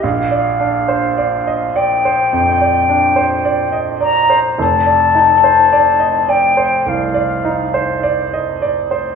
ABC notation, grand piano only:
X:1
M:4/4
L:1/16
Q:1/4=53
K:Bb
V:1 name="Grand piano"
B,,, d D c d e d c F,, d D c d e d c | F,,, d E c d e d c C,, d E c d e d c |]